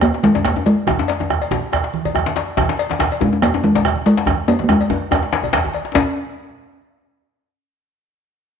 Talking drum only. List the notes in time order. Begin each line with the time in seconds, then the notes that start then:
0.02 A#3
0.24 G#3
0.44 A#3
0.66 G#3
3.21 G#3
3.42 A#3
3.64 G#3
4.06 G#3
4.48 A#3
4.64 A#3
4.69 G#3
5.95 C#4